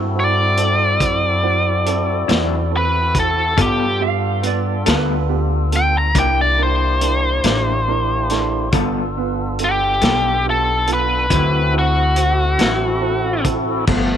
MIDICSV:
0, 0, Header, 1, 8, 480
1, 0, Start_track
1, 0, Tempo, 858001
1, 2003, Time_signature, 12, 3, 24, 8
1, 7928, End_track
2, 0, Start_track
2, 0, Title_t, "Electric slide guitar"
2, 0, Program_c, 0, 29
2, 2250, Note_on_c, 0, 77, 71
2, 2479, Note_off_c, 0, 77, 0
2, 2500, Note_on_c, 0, 74, 64
2, 2724, Note_off_c, 0, 74, 0
2, 2736, Note_on_c, 0, 71, 80
2, 2962, Note_off_c, 0, 71, 0
2, 7928, End_track
3, 0, Start_track
3, 0, Title_t, "Lead electric guitar"
3, 0, Program_c, 1, 29
3, 111, Note_on_c, 1, 74, 81
3, 1514, Note_off_c, 1, 74, 0
3, 1549, Note_on_c, 1, 71, 79
3, 1769, Note_off_c, 1, 71, 0
3, 1787, Note_on_c, 1, 69, 75
3, 2008, Note_off_c, 1, 69, 0
3, 2024, Note_on_c, 1, 67, 82
3, 2246, Note_off_c, 1, 67, 0
3, 3224, Note_on_c, 1, 79, 90
3, 3330, Note_off_c, 1, 79, 0
3, 3347, Note_on_c, 1, 82, 65
3, 3451, Note_off_c, 1, 82, 0
3, 3466, Note_on_c, 1, 79, 73
3, 3571, Note_off_c, 1, 79, 0
3, 3588, Note_on_c, 1, 74, 69
3, 3692, Note_off_c, 1, 74, 0
3, 3708, Note_on_c, 1, 72, 67
3, 4873, Note_off_c, 1, 72, 0
3, 5396, Note_on_c, 1, 67, 84
3, 5846, Note_off_c, 1, 67, 0
3, 5876, Note_on_c, 1, 69, 62
3, 6093, Note_off_c, 1, 69, 0
3, 6118, Note_on_c, 1, 71, 70
3, 6567, Note_off_c, 1, 71, 0
3, 6595, Note_on_c, 1, 66, 71
3, 7517, Note_off_c, 1, 66, 0
3, 7928, End_track
4, 0, Start_track
4, 0, Title_t, "Tonewheel organ"
4, 0, Program_c, 2, 16
4, 0, Note_on_c, 2, 60, 55
4, 0, Note_on_c, 2, 64, 57
4, 0, Note_on_c, 2, 66, 60
4, 0, Note_on_c, 2, 69, 54
4, 1979, Note_off_c, 2, 66, 0
4, 1980, Note_off_c, 2, 69, 0
4, 1981, Note_off_c, 2, 60, 0
4, 1982, Note_off_c, 2, 64, 0
4, 1996, Note_on_c, 2, 62, 57
4, 1997, Note_on_c, 2, 69, 53
4, 1999, Note_on_c, 2, 65, 63
4, 2001, Note_on_c, 2, 59, 56
4, 3425, Note_off_c, 2, 62, 0
4, 3426, Note_off_c, 2, 69, 0
4, 3427, Note_off_c, 2, 59, 0
4, 3427, Note_off_c, 2, 65, 0
4, 3433, Note_on_c, 2, 64, 59
4, 3434, Note_on_c, 2, 58, 57
4, 3434, Note_on_c, 2, 67, 58
4, 3437, Note_on_c, 2, 62, 62
4, 4864, Note_off_c, 2, 58, 0
4, 4864, Note_off_c, 2, 64, 0
4, 4864, Note_off_c, 2, 67, 0
4, 4866, Note_off_c, 2, 62, 0
4, 4875, Note_on_c, 2, 59, 59
4, 4876, Note_on_c, 2, 62, 60
4, 4876, Note_on_c, 2, 65, 61
4, 4876, Note_on_c, 2, 69, 63
4, 6305, Note_off_c, 2, 59, 0
4, 6305, Note_off_c, 2, 69, 0
4, 6306, Note_off_c, 2, 62, 0
4, 6306, Note_off_c, 2, 65, 0
4, 6319, Note_on_c, 2, 64, 56
4, 6320, Note_on_c, 2, 66, 56
4, 6322, Note_on_c, 2, 60, 59
4, 6325, Note_on_c, 2, 69, 54
4, 7747, Note_off_c, 2, 64, 0
4, 7748, Note_off_c, 2, 66, 0
4, 7749, Note_off_c, 2, 60, 0
4, 7750, Note_off_c, 2, 69, 0
4, 7759, Note_on_c, 2, 53, 43
4, 7765, Note_on_c, 2, 57, 36
4, 7766, Note_on_c, 2, 59, 43
4, 7928, Note_off_c, 2, 53, 0
4, 7928, Note_off_c, 2, 57, 0
4, 7928, Note_off_c, 2, 59, 0
4, 7928, End_track
5, 0, Start_track
5, 0, Title_t, "Upright piano"
5, 0, Program_c, 3, 0
5, 84, Note_on_c, 3, 60, 49
5, 86, Note_on_c, 3, 66, 49
5, 87, Note_on_c, 3, 64, 46
5, 263, Note_off_c, 3, 60, 0
5, 264, Note_off_c, 3, 66, 0
5, 265, Note_off_c, 3, 64, 0
5, 323, Note_on_c, 3, 60, 53
5, 323, Note_on_c, 3, 69, 59
5, 324, Note_on_c, 3, 64, 46
5, 503, Note_off_c, 3, 60, 0
5, 503, Note_off_c, 3, 64, 0
5, 503, Note_off_c, 3, 69, 0
5, 560, Note_on_c, 3, 64, 45
5, 560, Note_on_c, 3, 66, 48
5, 561, Note_on_c, 3, 60, 44
5, 741, Note_off_c, 3, 64, 0
5, 741, Note_off_c, 3, 66, 0
5, 742, Note_off_c, 3, 60, 0
5, 801, Note_on_c, 3, 60, 63
5, 801, Note_on_c, 3, 64, 54
5, 803, Note_on_c, 3, 66, 69
5, 982, Note_off_c, 3, 60, 0
5, 982, Note_off_c, 3, 64, 0
5, 983, Note_off_c, 3, 66, 0
5, 1040, Note_on_c, 3, 60, 61
5, 1043, Note_on_c, 3, 64, 49
5, 1045, Note_on_c, 3, 69, 71
5, 1221, Note_off_c, 3, 60, 0
5, 1223, Note_off_c, 3, 64, 0
5, 1224, Note_off_c, 3, 69, 0
5, 1277, Note_on_c, 3, 60, 60
5, 1280, Note_on_c, 3, 64, 52
5, 1282, Note_on_c, 3, 66, 62
5, 1460, Note_off_c, 3, 60, 0
5, 1461, Note_off_c, 3, 64, 0
5, 1462, Note_off_c, 3, 66, 0
5, 1516, Note_on_c, 3, 60, 48
5, 1519, Note_on_c, 3, 64, 44
5, 1520, Note_on_c, 3, 69, 50
5, 1699, Note_off_c, 3, 60, 0
5, 1701, Note_off_c, 3, 64, 0
5, 1701, Note_off_c, 3, 69, 0
5, 1758, Note_on_c, 3, 60, 48
5, 1759, Note_on_c, 3, 64, 43
5, 1761, Note_on_c, 3, 66, 53
5, 1940, Note_off_c, 3, 60, 0
5, 1941, Note_off_c, 3, 64, 0
5, 1942, Note_off_c, 3, 66, 0
5, 1997, Note_on_c, 3, 59, 58
5, 1997, Note_on_c, 3, 65, 50
5, 1998, Note_on_c, 3, 69, 56
5, 2180, Note_off_c, 3, 59, 0
5, 2180, Note_off_c, 3, 65, 0
5, 2180, Note_off_c, 3, 69, 0
5, 2239, Note_on_c, 3, 65, 47
5, 2240, Note_on_c, 3, 59, 54
5, 2240, Note_on_c, 3, 67, 58
5, 2421, Note_off_c, 3, 59, 0
5, 2421, Note_off_c, 3, 65, 0
5, 2421, Note_off_c, 3, 67, 0
5, 2477, Note_on_c, 3, 71, 62
5, 2478, Note_on_c, 3, 59, 53
5, 2480, Note_on_c, 3, 65, 46
5, 2660, Note_off_c, 3, 59, 0
5, 2660, Note_off_c, 3, 71, 0
5, 2661, Note_off_c, 3, 65, 0
5, 2715, Note_on_c, 3, 59, 57
5, 2717, Note_on_c, 3, 69, 56
5, 2718, Note_on_c, 3, 65, 50
5, 2899, Note_off_c, 3, 59, 0
5, 2900, Note_off_c, 3, 65, 0
5, 2900, Note_off_c, 3, 69, 0
5, 2958, Note_on_c, 3, 65, 52
5, 2959, Note_on_c, 3, 59, 56
5, 2959, Note_on_c, 3, 67, 66
5, 3141, Note_off_c, 3, 59, 0
5, 3141, Note_off_c, 3, 65, 0
5, 3141, Note_off_c, 3, 67, 0
5, 3201, Note_on_c, 3, 59, 50
5, 3202, Note_on_c, 3, 69, 61
5, 3203, Note_on_c, 3, 65, 49
5, 3382, Note_off_c, 3, 59, 0
5, 3382, Note_off_c, 3, 69, 0
5, 3383, Note_off_c, 3, 65, 0
5, 3441, Note_on_c, 3, 62, 45
5, 3447, Note_on_c, 3, 64, 46
5, 3447, Note_on_c, 3, 70, 53
5, 3622, Note_off_c, 3, 62, 0
5, 3625, Note_off_c, 3, 64, 0
5, 3625, Note_off_c, 3, 70, 0
5, 3682, Note_on_c, 3, 62, 50
5, 3684, Note_on_c, 3, 64, 47
5, 3685, Note_on_c, 3, 70, 55
5, 3863, Note_off_c, 3, 62, 0
5, 3863, Note_off_c, 3, 64, 0
5, 3864, Note_off_c, 3, 70, 0
5, 3925, Note_on_c, 3, 62, 50
5, 3925, Note_on_c, 3, 70, 52
5, 3926, Note_on_c, 3, 64, 42
5, 4104, Note_off_c, 3, 62, 0
5, 4104, Note_off_c, 3, 64, 0
5, 4104, Note_off_c, 3, 70, 0
5, 4167, Note_on_c, 3, 62, 44
5, 4167, Note_on_c, 3, 64, 42
5, 4169, Note_on_c, 3, 67, 53
5, 4345, Note_off_c, 3, 62, 0
5, 4345, Note_off_c, 3, 64, 0
5, 4346, Note_off_c, 3, 67, 0
5, 4409, Note_on_c, 3, 62, 58
5, 4409, Note_on_c, 3, 64, 50
5, 4411, Note_on_c, 3, 70, 58
5, 4586, Note_off_c, 3, 62, 0
5, 4586, Note_off_c, 3, 64, 0
5, 4587, Note_off_c, 3, 70, 0
5, 4647, Note_on_c, 3, 62, 58
5, 4648, Note_on_c, 3, 64, 55
5, 4652, Note_on_c, 3, 69, 60
5, 4825, Note_off_c, 3, 62, 0
5, 4825, Note_off_c, 3, 64, 0
5, 4827, Note_off_c, 3, 69, 0
5, 4886, Note_on_c, 3, 59, 62
5, 4888, Note_on_c, 3, 69, 70
5, 4889, Note_on_c, 3, 65, 59
5, 5065, Note_off_c, 3, 59, 0
5, 5066, Note_off_c, 3, 65, 0
5, 5066, Note_off_c, 3, 69, 0
5, 5130, Note_on_c, 3, 59, 56
5, 5133, Note_on_c, 3, 71, 63
5, 5134, Note_on_c, 3, 65, 57
5, 5306, Note_off_c, 3, 59, 0
5, 5308, Note_off_c, 3, 65, 0
5, 5308, Note_off_c, 3, 71, 0
5, 5369, Note_on_c, 3, 69, 47
5, 5370, Note_on_c, 3, 65, 42
5, 5371, Note_on_c, 3, 59, 46
5, 5546, Note_off_c, 3, 69, 0
5, 5547, Note_off_c, 3, 59, 0
5, 5547, Note_off_c, 3, 65, 0
5, 5607, Note_on_c, 3, 59, 46
5, 5608, Note_on_c, 3, 65, 40
5, 5610, Note_on_c, 3, 69, 48
5, 5785, Note_off_c, 3, 59, 0
5, 5786, Note_off_c, 3, 65, 0
5, 5787, Note_off_c, 3, 69, 0
5, 5846, Note_on_c, 3, 59, 45
5, 5847, Note_on_c, 3, 65, 46
5, 5848, Note_on_c, 3, 67, 50
5, 6024, Note_off_c, 3, 59, 0
5, 6025, Note_off_c, 3, 65, 0
5, 6025, Note_off_c, 3, 67, 0
5, 6083, Note_on_c, 3, 59, 50
5, 6084, Note_on_c, 3, 65, 49
5, 6086, Note_on_c, 3, 69, 60
5, 6263, Note_off_c, 3, 59, 0
5, 6264, Note_off_c, 3, 65, 0
5, 6265, Note_off_c, 3, 69, 0
5, 6326, Note_on_c, 3, 60, 47
5, 6327, Note_on_c, 3, 64, 42
5, 6330, Note_on_c, 3, 66, 49
5, 6504, Note_off_c, 3, 60, 0
5, 6505, Note_off_c, 3, 64, 0
5, 6507, Note_off_c, 3, 66, 0
5, 6559, Note_on_c, 3, 60, 51
5, 6559, Note_on_c, 3, 66, 48
5, 6560, Note_on_c, 3, 64, 43
5, 6741, Note_off_c, 3, 60, 0
5, 6741, Note_off_c, 3, 66, 0
5, 6742, Note_off_c, 3, 64, 0
5, 6801, Note_on_c, 3, 60, 48
5, 6803, Note_on_c, 3, 64, 46
5, 6805, Note_on_c, 3, 66, 52
5, 6982, Note_off_c, 3, 60, 0
5, 6983, Note_off_c, 3, 64, 0
5, 6984, Note_off_c, 3, 66, 0
5, 7040, Note_on_c, 3, 64, 41
5, 7041, Note_on_c, 3, 60, 46
5, 7043, Note_on_c, 3, 66, 49
5, 7222, Note_off_c, 3, 60, 0
5, 7222, Note_off_c, 3, 64, 0
5, 7223, Note_off_c, 3, 66, 0
5, 7278, Note_on_c, 3, 64, 52
5, 7279, Note_on_c, 3, 60, 56
5, 7281, Note_on_c, 3, 69, 55
5, 7461, Note_off_c, 3, 60, 0
5, 7461, Note_off_c, 3, 64, 0
5, 7462, Note_off_c, 3, 69, 0
5, 7516, Note_on_c, 3, 60, 58
5, 7519, Note_on_c, 3, 64, 53
5, 7522, Note_on_c, 3, 69, 65
5, 7700, Note_off_c, 3, 60, 0
5, 7701, Note_off_c, 3, 64, 0
5, 7703, Note_off_c, 3, 69, 0
5, 7759, Note_on_c, 3, 59, 55
5, 7763, Note_on_c, 3, 65, 56
5, 7763, Note_on_c, 3, 69, 59
5, 7928, Note_off_c, 3, 59, 0
5, 7928, Note_off_c, 3, 65, 0
5, 7928, Note_off_c, 3, 69, 0
5, 7928, End_track
6, 0, Start_track
6, 0, Title_t, "Clean electric guitar"
6, 0, Program_c, 4, 27
6, 1277, Note_on_c, 4, 64, 74
6, 1280, Note_on_c, 4, 60, 69
6, 1285, Note_on_c, 4, 54, 60
6, 1288, Note_on_c, 4, 50, 56
6, 1424, Note_off_c, 4, 64, 0
6, 1425, Note_off_c, 4, 60, 0
6, 1428, Note_off_c, 4, 54, 0
6, 1429, Note_off_c, 4, 50, 0
6, 1996, Note_on_c, 4, 55, 62
6, 2000, Note_on_c, 4, 59, 61
6, 2004, Note_on_c, 4, 65, 66
6, 2006, Note_on_c, 4, 69, 61
6, 2143, Note_off_c, 4, 55, 0
6, 2145, Note_off_c, 4, 59, 0
6, 2147, Note_off_c, 4, 65, 0
6, 2148, Note_off_c, 4, 69, 0
6, 2720, Note_on_c, 4, 69, 67
6, 2724, Note_on_c, 4, 65, 53
6, 2727, Note_on_c, 4, 59, 51
6, 2730, Note_on_c, 4, 55, 54
6, 2865, Note_off_c, 4, 69, 0
6, 2867, Note_off_c, 4, 65, 0
6, 2869, Note_off_c, 4, 59, 0
6, 2870, Note_off_c, 4, 55, 0
6, 3439, Note_on_c, 4, 48, 64
6, 3444, Note_on_c, 4, 58, 65
6, 3447, Note_on_c, 4, 62, 65
6, 3450, Note_on_c, 4, 64, 76
6, 3585, Note_off_c, 4, 48, 0
6, 3587, Note_off_c, 4, 58, 0
6, 3589, Note_off_c, 4, 62, 0
6, 3590, Note_off_c, 4, 64, 0
6, 4163, Note_on_c, 4, 64, 59
6, 4167, Note_on_c, 4, 62, 53
6, 4169, Note_on_c, 4, 58, 51
6, 4171, Note_on_c, 4, 48, 46
6, 4307, Note_off_c, 4, 64, 0
6, 4309, Note_off_c, 4, 62, 0
6, 4310, Note_off_c, 4, 58, 0
6, 4311, Note_off_c, 4, 48, 0
6, 4887, Note_on_c, 4, 55, 67
6, 4890, Note_on_c, 4, 59, 70
6, 4893, Note_on_c, 4, 65, 68
6, 4897, Note_on_c, 4, 69, 77
6, 5029, Note_off_c, 4, 55, 0
6, 5030, Note_off_c, 4, 59, 0
6, 5032, Note_off_c, 4, 65, 0
6, 5034, Note_off_c, 4, 69, 0
6, 5603, Note_on_c, 4, 69, 52
6, 5608, Note_on_c, 4, 65, 46
6, 5610, Note_on_c, 4, 59, 42
6, 5613, Note_on_c, 4, 55, 42
6, 5747, Note_off_c, 4, 69, 0
6, 5749, Note_off_c, 4, 65, 0
6, 5751, Note_off_c, 4, 59, 0
6, 5752, Note_off_c, 4, 55, 0
6, 6322, Note_on_c, 4, 50, 64
6, 6325, Note_on_c, 4, 54, 66
6, 6327, Note_on_c, 4, 60, 65
6, 6331, Note_on_c, 4, 64, 66
6, 6466, Note_off_c, 4, 50, 0
6, 6468, Note_off_c, 4, 54, 0
6, 6469, Note_off_c, 4, 60, 0
6, 6471, Note_off_c, 4, 64, 0
6, 7044, Note_on_c, 4, 64, 58
6, 7048, Note_on_c, 4, 60, 49
6, 7049, Note_on_c, 4, 54, 45
6, 7055, Note_on_c, 4, 50, 45
6, 7188, Note_off_c, 4, 64, 0
6, 7190, Note_off_c, 4, 54, 0
6, 7190, Note_off_c, 4, 60, 0
6, 7193, Note_off_c, 4, 50, 0
6, 7762, Note_on_c, 4, 55, 55
6, 7766, Note_on_c, 4, 59, 56
6, 7767, Note_on_c, 4, 65, 64
6, 7772, Note_on_c, 4, 69, 63
6, 7907, Note_off_c, 4, 55, 0
6, 7909, Note_off_c, 4, 59, 0
6, 7910, Note_off_c, 4, 65, 0
6, 7912, Note_off_c, 4, 69, 0
6, 7928, End_track
7, 0, Start_track
7, 0, Title_t, "Upright bass"
7, 0, Program_c, 5, 32
7, 0, Note_on_c, 5, 43, 70
7, 540, Note_off_c, 5, 43, 0
7, 564, Note_on_c, 5, 42, 69
7, 1262, Note_off_c, 5, 42, 0
7, 1280, Note_on_c, 5, 40, 79
7, 1980, Note_off_c, 5, 40, 0
7, 2003, Note_on_c, 5, 43, 73
7, 2701, Note_off_c, 5, 43, 0
7, 2723, Note_on_c, 5, 38, 73
7, 3421, Note_off_c, 5, 38, 0
7, 3441, Note_on_c, 5, 36, 73
7, 4140, Note_off_c, 5, 36, 0
7, 4163, Note_on_c, 5, 33, 79
7, 4861, Note_off_c, 5, 33, 0
7, 4883, Note_on_c, 5, 31, 71
7, 5581, Note_off_c, 5, 31, 0
7, 5605, Note_on_c, 5, 35, 76
7, 6303, Note_off_c, 5, 35, 0
7, 6324, Note_on_c, 5, 38, 78
7, 7022, Note_off_c, 5, 38, 0
7, 7045, Note_on_c, 5, 33, 81
7, 7743, Note_off_c, 5, 33, 0
7, 7761, Note_on_c, 5, 31, 58
7, 7928, Note_off_c, 5, 31, 0
7, 7928, End_track
8, 0, Start_track
8, 0, Title_t, "Drums"
8, 320, Note_on_c, 9, 42, 48
8, 376, Note_off_c, 9, 42, 0
8, 562, Note_on_c, 9, 36, 70
8, 562, Note_on_c, 9, 42, 70
8, 618, Note_off_c, 9, 36, 0
8, 618, Note_off_c, 9, 42, 0
8, 1042, Note_on_c, 9, 42, 52
8, 1098, Note_off_c, 9, 42, 0
8, 1281, Note_on_c, 9, 42, 63
8, 1292, Note_on_c, 9, 38, 89
8, 1337, Note_off_c, 9, 42, 0
8, 1348, Note_off_c, 9, 38, 0
8, 1760, Note_on_c, 9, 42, 49
8, 1761, Note_on_c, 9, 36, 61
8, 1816, Note_off_c, 9, 42, 0
8, 1817, Note_off_c, 9, 36, 0
8, 2001, Note_on_c, 9, 36, 96
8, 2001, Note_on_c, 9, 42, 74
8, 2057, Note_off_c, 9, 36, 0
8, 2057, Note_off_c, 9, 42, 0
8, 2480, Note_on_c, 9, 42, 50
8, 2535, Note_off_c, 9, 42, 0
8, 2719, Note_on_c, 9, 42, 76
8, 2730, Note_on_c, 9, 38, 97
8, 2774, Note_off_c, 9, 42, 0
8, 2786, Note_off_c, 9, 38, 0
8, 3201, Note_on_c, 9, 42, 52
8, 3257, Note_off_c, 9, 42, 0
8, 3440, Note_on_c, 9, 36, 66
8, 3440, Note_on_c, 9, 42, 71
8, 3496, Note_off_c, 9, 36, 0
8, 3496, Note_off_c, 9, 42, 0
8, 3922, Note_on_c, 9, 42, 58
8, 3978, Note_off_c, 9, 42, 0
8, 4160, Note_on_c, 9, 42, 73
8, 4171, Note_on_c, 9, 38, 84
8, 4216, Note_off_c, 9, 42, 0
8, 4227, Note_off_c, 9, 38, 0
8, 4641, Note_on_c, 9, 42, 48
8, 4652, Note_on_c, 9, 38, 27
8, 4697, Note_off_c, 9, 42, 0
8, 4708, Note_off_c, 9, 38, 0
8, 4880, Note_on_c, 9, 42, 65
8, 4883, Note_on_c, 9, 36, 92
8, 4936, Note_off_c, 9, 42, 0
8, 4939, Note_off_c, 9, 36, 0
8, 5363, Note_on_c, 9, 42, 46
8, 5419, Note_off_c, 9, 42, 0
8, 5602, Note_on_c, 9, 42, 74
8, 5613, Note_on_c, 9, 38, 99
8, 5658, Note_off_c, 9, 42, 0
8, 5669, Note_off_c, 9, 38, 0
8, 6083, Note_on_c, 9, 42, 54
8, 6139, Note_off_c, 9, 42, 0
8, 6323, Note_on_c, 9, 42, 73
8, 6324, Note_on_c, 9, 36, 69
8, 6379, Note_off_c, 9, 42, 0
8, 6380, Note_off_c, 9, 36, 0
8, 6802, Note_on_c, 9, 42, 56
8, 6858, Note_off_c, 9, 42, 0
8, 7042, Note_on_c, 9, 42, 75
8, 7053, Note_on_c, 9, 38, 94
8, 7098, Note_off_c, 9, 42, 0
8, 7109, Note_off_c, 9, 38, 0
8, 7522, Note_on_c, 9, 42, 53
8, 7523, Note_on_c, 9, 36, 62
8, 7578, Note_off_c, 9, 42, 0
8, 7579, Note_off_c, 9, 36, 0
8, 7761, Note_on_c, 9, 49, 78
8, 7763, Note_on_c, 9, 36, 81
8, 7817, Note_off_c, 9, 49, 0
8, 7819, Note_off_c, 9, 36, 0
8, 7928, End_track
0, 0, End_of_file